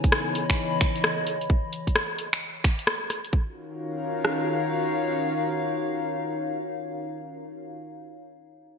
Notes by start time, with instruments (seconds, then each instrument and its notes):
Already playing: analog synth pad C#3 B3 D#4 E4 G#4, ambient pad E3 C#5 G#5 B5
0.04 kick, closed hi-hat
0.12 cross-stick
0.35 open hi-hat
0.50 finger snap, kick, closed hi-hat
0.81 finger snap, kick, open hi-hat
0.95 closed hi-hat
1.04 cross-stick
1.27 open hi-hat
1.41 closed hi-hat
1.50 kick
1.73 open hi-hat
1.87 kick, closed hi-hat
1.96 cross-stick
2.19 open hi-hat
2.33 finger snap, closed hi-hat
2.64 finger snap, kick, open hi-hat
2.79 closed hi-hat
2.87 cross-stick
3.10 cross-stick, open hi-hat
3.25 closed hi-hat
3.33 analog synth pad D#3 C#4 F4 F#4 A#4, ambient pad D#4, kick
3.41 ambient pad C#5
3.49 ambient pad F5
4.25 cross-stick